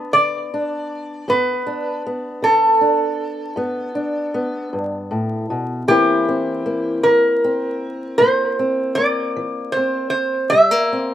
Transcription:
Already playing: B3 D4 D5
0.13 D3 D5
0.54 D4
1.28 G2 B3 B4
1.67 D4
2.06 B3
2.42 D3 A4
2.81 D4
3.56 G2 B3
3.95 D4
4.34 B3
4.73 G2
5.11 A2
5.50 B2
5.88 C3 E3 A#3 C4 E4 G4
6.29 C4
6.66 A#3
7.03 E3 A#4
7.44 C4
8.18 C3 A#3 C5
8.59 C4
8.95 A#3 D5
9.36 E3
9.72 C5
9.77 C4
10.10 C5
10.50 C3 G3 E5
10.71 A#3
10.93 C4

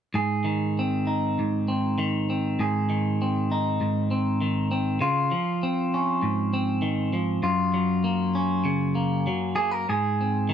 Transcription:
0.14 G#2 G#4
0.44 D#3
0.79 C4
1.07 D#4
1.39 G#2
1.68 C4
1.98 D#3
2.30 C4
2.59 G#2 G#4
2.90 D#3
3.22 C4
3.52 D#4
3.81 G#2
4.11 C4
4.41 D#3
4.71 C4
5.01 C#3 F4
5.31 F3
5.63 C4
5.94 C#4
6.23 G#2
6.53 C4
6.82 D#3
7.13 F3
7.43 F#2 F4
7.74 F#3
8.04 A#3
8.35 C#4
8.65 C#3
8.95 A#3
9.27 F#3
9.56 A#3 G#4
9.71 A#4
9.89 G#2 G#4
10.21 C4
10.49 D#3

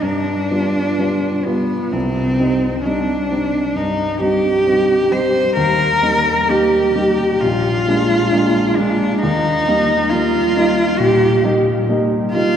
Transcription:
0.02 G2 D4
0.51 G3 B3 F4
0.98 G3 B3 F4
1.45 G3 B3 F4
1.93 C2 C4
2.39 G3 C4 D#4
2.84 G3 C4 D4 D#4
3.31 G3 C4 D#4
3.75 G2 D#4
4.21 G3 C4 D#4 G4
4.67 G3 C4 D#4
5.12 G3 C4 D#4 C5
5.57 D#2 A#4
6.02 G3 A#3 D#4
6.48 G3 A#3 D#4 G4
6.95 G3 A#3 D#4
7.41 A#1 F4
7.88 G#3 A#3 D4
8.32 G#3 A#3 D4
8.76 G#3 A#3 D4
9.22 D#2 D#4
9.68 G3 A#3 D#4
10.10 G3 A#3 D#4 F4
10.56 G3 A#3 D#4
10.99 A#2 G4
11.44 G3 A#3 D#4
11.89 G3 A#3 D#4
12.31 G3 A#3 F4
12.36 D#4

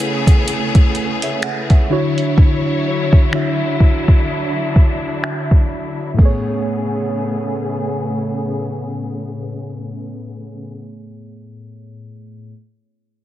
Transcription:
Already playing: C#3 A3 B3 E4 G#4 B4 C#5
0.00 closed hi-hat
0.27 kick, closed hi-hat
0.48 closed hi-hat
0.75 kick, closed hi-hat
0.95 closed hi-hat
1.22 C#5 E5, closed hi-hat
1.42 F#5, finger snap, closed hi-hat
1.70 C#5 E5, kick, closed hi-hat
1.89 D3 F#3 D4 E4 F#4 C#5
2.18 closed hi-hat
2.38 kick
3.13 kick
3.32 D3 D4 E4 F#4 E5, finger snap
3.80 D4, kick
4.08 kick
4.76 kick
5.24 finger snap
5.51 kick
6.14 A2 A3
6.18 C#3 A3 B3 G#4, kick, crash
6.25 C#5

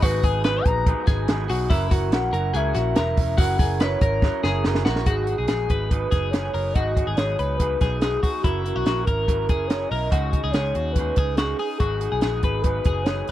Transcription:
0.02 G#1 G#2 D#3 F#3 B3 D#4 F#4 G#4 B4, kick, hi-hat pedal, open hi-hat
0.23 G#1 F#3 B3 D#4 G#4, kick, hi-hat pedal, open hi-hat
0.44 F#3 B3 D#4 G#4 B4, snare, hi-hat pedal, open hi-hat
0.65 A#1 F#3 B3 D#4 G#4 A#5, kick, hi-hat pedal, open hi-hat
0.86 G#2 D#3 F#3 B3 D#4 G#4, kick, hi-hat pedal, open hi-hat
1.07 G#1 F#3 B3 D#4 G#4, kick, snare, hi-hat pedal, open hi-hat
1.27 G#1 F#3 B3 D#4 G#4, snare, hi-hat pedal, open hi-hat
1.48 B1 F#3 B3 D#4 F#4 G#4, hi-hat pedal, open hi-hat
1.70 F#1 F#3 C#4 E4 A#4, kick, hi-hat pedal, open hi-hat
1.90 C#4 E4 F#4 A#4, kick, hi-hat pedal, open hi-hat
2.12 A#1 F#3 C#4 E4 A#4 F#5, snare, hi-hat pedal, open hi-hat
2.33 F#1 C#4 E4 A#4, hi-hat pedal, open hi-hat
2.54 C#2 F#3 C#4 E4 G#4 A#4 E5, hi-hat pedal, open hi-hat
2.75 A#1 C#4 E4 F#4 A#4, snare, hi-hat pedal, open hi-hat
2.96 F#3 C#4 E4 A#4 E5, snare, hi-hat pedal, open hi-hat
3.17 E1 C#4 E4 A#4, kick, hi-hat pedal, open hi-hat
3.38 F#1 F#3 C#4 E4 F#4 A#4 F#5, kick, hi-hat pedal, open hi-hat
3.59 F#1 C#4 E4 G#4 A#4, kick, hi-hat pedal, open hi-hat
3.80 F#3 C#4 E4 A#4 B4 C#5, snare, hi-hat pedal, open hi-hat
4.01 G#1 C#4 E4 A#4, kick, hi-hat pedal, open hi-hat
4.22 F#3 C#4 E4 A#4, kick, snare
4.43 F#1 C#4 E4 G#4 A#4, snare
4.64 F#1 F#3 C#4 E4 A#4, snare
4.75 snare
4.85 A#1 C#4 E4 F#4 A#4, snare
4.96 snare
5.05 G#1 G#2 D#3 F#3 B3 D#4 F#4 G#4, kick, closed hi-hat
5.27 F#3 B3 D#4 G#4, closed hi-hat
5.38 B1 G#4
5.48 A#1 G#2 D#3 F#3 B3 D#4 G#4, snare, closed hi-hat
5.70 G#1 F#3 B3 D#4 G#4 B4, kick, closed hi-hat
5.89 F#3 B3 D#4 G#4 B4, kick, closed hi-hat
6.11 F#1 F#3 B3 D#4 G#4, kick, snare, closed hi-hat
6.31 G#2 D#3 F#3 B3 D#4 G#4 C#5, snare, closed hi-hat
6.53 F#1 F#3 B3 D#4 G#4 A#4, open hi-hat
6.73 G#1 G#2 D#3 F#3 B3 D#4 F#4 G#4 D#5, kick, closed hi-hat
6.96 F#3 B3 D#4 G#4, kick, closed hi-hat
7.07 G#1 G#4
7.16 G#1 G#2 D#3 F#3 B3 D#4 G#4 C#5, snare, closed hi-hat
7.38 C#2 F#3 B3 D#4 G#4 B4, closed hi-hat
7.57 F#3 B3 D#4 B4, kick, closed hi-hat
7.62 G#4
7.81 B1 F#3 B3 D#4 G#4, kick, snare, closed hi-hat
8.00 G#2 D#3 F#3 B3 D#4 G#4, snare, closed hi-hat
8.23 F#3 B3 D#4 F#4 G#4, kick, open hi-hat
8.41 F#1 F#3 C#4 E4 F#4, kick, closed hi-hat
8.45 E4 A#4
8.64 C#4 E4 A#4, closed hi-hat
8.76 B1 F#4
8.86 A#1 F#3 C#4 E4 F#4 A#4, snare, closed hi-hat
9.04 G#1 E4 A#4, kick, closed hi-hat
9.08 C#4
9.27 F#3 C#4 E4 A#4, kick, closed hi-hat
9.49 F#1 C#4 E4 G#4, kick, closed hi-hat
9.67 F#3 C#4 E4 C#5, snare, closed hi-hat
9.72 A#4
9.89 B1 C#4 E4 A#4 D#5, open hi-hat
10.10 C#2 C#3 G#3 C#4 D#4 F#4 G#4, kick, closed hi-hat
10.32 C#4 D#4 G#4, kick, closed hi-hat
10.44 C#2 G#4
10.51 C#2 C#3 G#3 G#4 C#5, snare, closed hi-hat
10.55 C#4 D#4 G#4
10.75 D#2 C#4 D#4 F#4 G#4, closed hi-hat
10.93 B4, kick, closed hi-hat
10.98 G#3 C#4 D#4 G#4
11.16 C#2 D#4 G#4, kick, closed hi-hat
11.21 C#4
11.35 C#3 F#4 G#4, snare, closed hi-hat
11.39 G#3 C#4 D#4 G#4
11.59 C#4 D#4 G#4, open hi-hat
11.78 G#1 G#2 D#3 F#3 B3 D#4 F#4 G#4, kick, closed hi-hat
12.01 F#3 B3 D#4 G#4, closed hi-hat
12.12 B1 G#4
12.21 A#1 G#2 D#3 F#3 B3 D#4 G#4, snare, closed hi-hat
12.43 G#1 F#3 B3 D#4 G#4 B4, kick, closed hi-hat
12.62 F#3 B3 D#4 B4, kick, closed hi-hat
12.66 G#4
12.85 F#1 F#3 B3 D#4 G#4, kick, closed hi-hat
13.04 G#2 D#3 F#3 B3 D#4 G#4 C#5, snare, closed hi-hat
13.27 D#4 G#4, open hi-hat

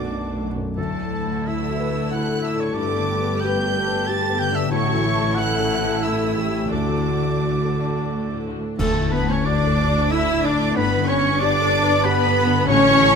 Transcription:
Already playing: B1 F#2 B2 A3 D4 F#4 A4 D5 D6
0.10 D4
0.33 A3
0.44 F#3
0.56 F#2
0.76 D2 D3 A3 E4 A4 A5
0.94 D4
1.02 A2
1.12 A3 E4
1.25 A3
1.29 F#4
1.45 E4 A4 E5 E6
1.63 D4
1.69 F#4
1.77 A3 F#4 B4
1.90 A4
1.95 D4
2.10 E4 A4 F#5 F#6
2.27 F#4
2.33 A3
2.42 D4 E4 E5 E6
2.55 A2 D4
2.60 C#5 C#6
2.73 G1 G2 B3 B4 D5 D6
2.77 G2 G4
2.89 D4
2.99 D3
3.09 B3 G4
3.21 B3
3.25 A4
3.40 G4 G5
3.44 G4 B4 G6
3.59 D4
3.66 A4
3.75 B3 A4
3.87 D4 B4
4.06 G4 A5 A6
4.22 A4
4.30 B3
4.38 D3 G4 G5 G6
4.50 D3 D4
4.55 E5 E6
4.70 A1 A2 A3 E4 F#4 A4 C#5 C#6
4.87 C#4
4.94 E3
5.04 A3 E4
5.15 A3
5.21 A4
5.35 E4 A4 F#5 F#6
5.54 C#4
5.59 A4
5.71 A3 A4
5.81 E4
5.87 C#4
6.02 A3 E4 A4 E5 E6
6.21 A4
6.27 E3
6.37 E3 E4 G4
6.51 A3
6.55 C#4
6.70 D2 D3 A3 D4 F#4 D5 D6
6.88 D4
6.96 A2
7.07 A3 F#4
7.19 A3
7.25 D4
7.41 A3 F#4
7.62 D4 A4
7.75 A4
7.79 F#4
7.87 F#4
7.95 D4
8.10 A3 F#4
8.30 A2 D4
8.48 F#4
8.57 A3
8.64 D4
8.78 D2 D3 A3 A4 A5, concert bass drum, crash
9.01 A2
9.12 A3 B3 B4 B5
9.23 A3
9.28 C#4 C#5 C#6
9.45 D4 F#4 D5 D6
9.67 A4
9.79 A4
9.88 F#4
10.11 A3 E4 F#4 E5 E6
10.33 A2
10.42 D4 E4 D5 D6
10.54 A3
10.75 G1 G2 B3 B4 B5
10.98 D3
11.07 B3 C#4 C#5 C#6
11.19 B3
11.39 D4 G4 D5 D6
11.62 A4
11.73 A4
11.83 B4
12.04 B3 G4 B4 B5
12.26 B3
12.38 D3
12.47 D3
12.68 A1 A2 C#4 C#5 C#6
12.90 E3
13.01 A3

